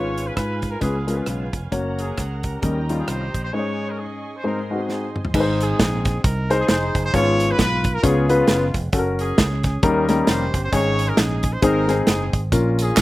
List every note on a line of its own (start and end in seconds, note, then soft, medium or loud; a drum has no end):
0.00 0.30 G#1 medium
0.00 0.59 G#2 medium
0.00 0.38 G#3 medium
0.00 0.38 C#4 medium
0.00 4.40 C#4 medium
0.00 0.36 F4 medium
0.00 0.38 F4 medium
0.00 0.39 B4 medium
0.00 1.71 B4 medium
0.00 0.26 C#5 loud
0.00 1.71 F5 medium
0.00 1.68 G#5 medium
0.18 closed hi-hat medium
0.26 0.34 B4 medium
0.35 0.75 G#2 medium
0.35 0.79 F4 medium
0.35 0.69 B4 medium
0.35 kick medium
0.35 cross-stick loud
0.35 closed hi-hat medium
0.62 kick medium
0.62 closed hi-hat medium
0.71 0.81 A#4 medium
0.81 1.20 C#2 medium
0.81 1.49 C#3 medium
0.81 0.95 G#3 medium
0.81 1.27 B3 soft
0.81 0.95 C#4 medium
0.81 0.95 F4 medium
0.81 1.16 F4 medium
0.81 1.15 G#4 medium
0.81 0.96 B4 medium
0.81 kick medium
0.81 closed hi-hat medium
1.07 1.41 G#3 medium
1.07 1.41 C#4 medium
1.07 1.42 F4 medium
1.07 1.13 A#4 medium
1.07 cross-stick soft
1.07 closed hi-hat medium
1.13 1.44 B4 medium
1.18 1.26 F4 medium
1.26 1.50 B1 medium
1.26 1.70 G#3 soft
1.26 1.70 B3 soft
1.26 1.61 F4 medium
1.26 cross-stick medium
1.26 closed hi-hat medium
1.53 1.69 F1 medium
1.53 kick medium
1.53 closed hi-hat medium
1.71 2.11 F#1 medium
1.71 2.19 A#3 medium
1.71 2.19 C#4 medium
1.71 2.20 F#4 medium
1.71 2.62 A#4 medium
1.71 2.20 C#5 medium
1.71 2.62 F#5 medium
1.71 2.61 A#5 medium
1.71 kick medium
1.71 closed hi-hat medium
1.99 2.44 C#4 medium
1.99 2.41 G#4 medium
1.99 closed hi-hat medium
2.18 2.56 C#2 medium
2.18 kick medium
2.18 cross-stick medium
2.18 closed hi-hat medium
2.43 3.31 C#4 medium
2.43 3.07 G4 medium
2.43 2.99 A#4 medium
2.43 kick medium
2.43 closed hi-hat medium
2.62 3.01 D#2 medium
2.62 3.31 D#3 medium
2.62 2.76 G3 medium
2.62 2.76 C#4 medium
2.62 2.77 D#4 medium
2.62 2.77 A#4 medium
2.62 3.52 D#5 medium
2.62 3.52 G5 medium
2.62 3.52 A#5 medium
2.62 kick loud
2.62 closed hi-hat medium
2.89 3.23 G3 medium
2.89 3.23 C#4 medium
2.89 3.23 D#4 medium
2.89 3.23 F4 medium
2.89 cross-stick soft
2.89 closed hi-hat medium
2.99 3.07 G#4 medium
3.08 3.31 C2 medium
3.08 3.50 G4 medium
3.08 3.43 C5 medium
3.08 cross-stick medium
3.08 closed hi-hat medium
3.34 3.50 A#1 medium
3.34 kick medium
3.34 closed hi-hat medium
3.44 3.53 C5 medium
3.53 4.21 G#2 soft
3.53 4.01 G#3 medium
3.53 4.01 C#4 medium
3.53 4.01 D#4 medium
3.53 3.98 G#4 medium
3.53 3.60 C5 medium
3.53 3.89 C#5 medium
3.53 4.43 D#5 medium
3.53 5.33 G#5 medium
3.53 4.43 C#6 medium
3.59 4.04 C#5 medium
3.90 3.99 A#4 medium
3.99 4.41 C#4 medium
3.99 4.41 D#4 medium
3.99 4.35 G#4 medium
4.35 4.44 C5 medium
4.44 5.12 G#2 medium
4.44 4.58 G#3 medium
4.44 4.58 C4 medium
4.44 4.58 D#4 medium
4.44 4.89 D#4 soft
4.44 4.78 A#4 medium
4.44 4.58 C5 medium
4.44 5.34 C5 medium
4.44 5.33 D#5 medium
4.44 5.34 C6 medium
4.70 5.04 G#3 medium
4.70 4.75 B3 soft
4.70 5.04 D#4 medium
4.70 5.04 F#4 medium
4.76 5.07 C4 medium
4.82 4.90 G#4 medium
4.89 5.32 C4 soft
4.89 5.32 D#4 soft
4.89 5.23 G#4 medium
4.89 snare soft
5.16 mid tom medium
5.25 floor tom medium
5.34 5.73 G#1 loud
5.34 6.02 G#2 medium
5.34 5.81 D#4 medium
5.34 5.81 G#4 medium
5.34 5.41 B4 medium
5.34 kick loud
5.34 crash medium
5.40 5.84 C5 medium
5.61 6.47 C4 medium
5.61 6.23 D#4 medium
5.61 6.21 G#4 medium
5.61 closed hi-hat medium
5.79 6.18 A#1 medium
5.79 kick medium
5.79 snare loud
5.79 closed hi-hat medium
6.05 kick loud
6.05 snare soft
6.05 closed hi-hat medium
6.24 6.62 C2 medium
6.24 6.68 D#4 medium
6.24 6.60 A#4 medium
6.24 kick loud
6.24 closed hi-hat loud
6.50 6.83 D#4 medium
6.50 6.84 G#4 medium
6.50 6.84 C5 medium
6.50 snare soft
6.50 closed hi-hat medium
6.60 6.68 G#4 medium
6.68 6.92 F1 medium
6.68 7.11 D#4 medium
6.68 7.11 G#4 medium
6.68 7.03 C5 loud
6.68 snare loud
6.68 closed hi-hat medium
6.95 7.11 F#1 medium
6.95 kick loud
6.95 closed hi-hat medium
7.04 7.13 C5 loud
7.13 7.52 G#1 loud
7.13 7.81 G#2 medium
7.13 7.60 B3 medium
7.13 7.61 C#4 medium
7.13 7.57 F4 medium
7.13 7.61 F4 medium
7.13 7.61 G#4 medium
7.13 7.49 C#5 loud
7.13 7.61 C#5 medium
7.13 kick loud
7.13 closed hi-hat medium
7.40 closed hi-hat medium
7.49 7.57 B4 loud
7.58 7.97 B1 medium
7.58 8.00 F4 medium
7.58 7.92 B4 loud
7.58 kick medium
7.58 snare loud
7.58 closed hi-hat medium
7.84 kick loud
7.84 closed hi-hat medium
7.94 8.03 A#4 loud
8.03 8.42 C#2 loud
8.03 8.71 C#3 medium
8.03 8.24 B3 medium
8.03 8.47 B3 medium
8.03 8.24 C#4 medium
8.03 8.24 F4 medium
8.03 8.36 F4 medium
8.03 8.36 G#4 medium
8.03 8.25 G#4 medium
8.03 8.25 C#5 medium
8.03 kick loud
8.03 closed hi-hat loud
8.29 8.63 B3 medium
8.29 8.63 C#4 medium
8.29 8.63 F4 medium
8.29 8.63 G#4 medium
8.29 8.63 B4 medium
8.29 closed hi-hat medium
8.38 8.46 F4 medium
8.47 8.71 F#1 medium
8.47 8.90 G#3 medium
8.47 8.90 B3 medium
8.47 8.81 F4 medium
8.47 snare loud
8.47 closed hi-hat medium
8.74 8.90 F1 medium
8.74 kick medium
8.74 closed hi-hat medium
8.93 9.31 F#1 loud
8.93 9.40 C#4 medium
8.93 9.40 F#4 medium
8.93 9.00 A4 medium
8.93 kick loud
8.93 closed hi-hat medium
8.99 9.43 A#4 medium
9.19 9.79 C#4 medium
9.19 9.62 G#4 medium
9.19 closed hi-hat medium
9.38 9.77 C#2 medium
9.38 kick loud
9.38 snare loud
9.38 closed hi-hat medium
9.63 9.82 G#4 medium
9.63 kick loud
9.63 snare soft
9.63 closed hi-hat medium
9.83 10.21 D#2 medium
9.83 10.50 D#3 medium
9.83 10.04 G3 medium
9.83 10.04 A#3 medium
9.83 10.04 C#4 medium
9.83 10.69 C#4 medium
9.83 10.04 D#4 medium
9.83 10.28 G4 medium
9.83 10.04 A#4 medium
9.83 10.19 A#4 medium
9.83 kick loud
9.83 closed hi-hat medium
10.09 10.42 G3 medium
10.09 10.42 A#3 medium
10.09 10.42 C#4 medium
10.09 10.43 D#4 medium
10.09 10.43 A#4 medium
10.09 snare soft
10.09 closed hi-hat medium
10.19 10.28 G#4 medium
10.27 10.50 F1 loud
10.27 10.70 G4 medium
10.27 10.61 C5 loud
10.27 snare loud
10.27 closed hi-hat loud
10.54 10.70 G1 medium
10.54 kick loud
10.54 closed hi-hat medium
10.63 10.72 C5 loud
10.72 11.11 G#1 loud
10.72 11.40 G#2 medium
10.72 11.19 C#4 medium
10.72 11.20 D#4 medium
10.72 11.17 G#4 medium
10.72 11.20 G#4 medium
10.72 11.08 C#5 loud
10.72 kick medium
10.72 closed hi-hat medium
10.99 closed hi-hat medium
11.08 11.18 A#4 medium
11.17 11.56 A#1 medium
11.17 11.60 C#4 medium
11.17 11.60 D#4 medium
11.17 11.53 G#4 medium
11.17 snare loud
11.17 closed hi-hat medium
11.43 kick loud
11.43 closed hi-hat medium
11.53 11.62 C5 loud
11.62 12.01 G#1 loud
11.62 12.30 G#2 medium
11.62 11.83 C4 medium
11.62 11.84 D#4 medium
11.62 12.06 D#4 medium
11.62 11.84 G#4 medium
11.62 11.98 A#4 medium
11.62 kick loud
11.62 closed hi-hat loud
11.88 12.22 C4 medium
11.88 12.22 D#4 medium
11.88 12.22 G#4 medium
11.88 snare soft
11.88 closed hi-hat medium
11.98 12.02 G#4 medium
12.07 12.30 F#1 medium
12.07 12.49 C4 medium
12.07 12.49 D#4 medium
12.07 12.40 G#4 medium
12.07 snare loud
12.07 closed hi-hat medium
12.33 12.49 G#1 medium
12.33 kick medium
12.33 closed hi-hat medium
12.52 12.90 A#1 loud
12.52 13.02 A#2 medium
12.52 12.99 C#4 medium
12.52 12.99 F4 medium
12.52 12.99 A#4 medium
12.52 kick loud
12.52 closed hi-hat medium
12.52 tambourine medium
12.79 13.02 C#4 medium
12.79 13.02 F4 medium
12.79 13.02 G#4 loud
12.79 closed hi-hat medium
12.79 tambourine medium
12.97 13.02 C2 medium
12.97 kick medium
12.97 snare loud
12.97 clap loud
12.97 closed hi-hat medium
12.97 tambourine loud